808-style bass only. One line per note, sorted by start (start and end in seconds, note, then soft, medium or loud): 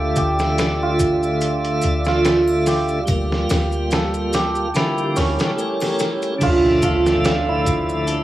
0.00 0.12 D2 medium
0.17 1.80 D2 medium
1.84 3.05 D2 medium
3.09 3.46 D2 loud
3.51 4.72 D2 loud
5.17 5.37 D2 medium
6.42 6.79 D2 loud
6.84 8.24 D2 loud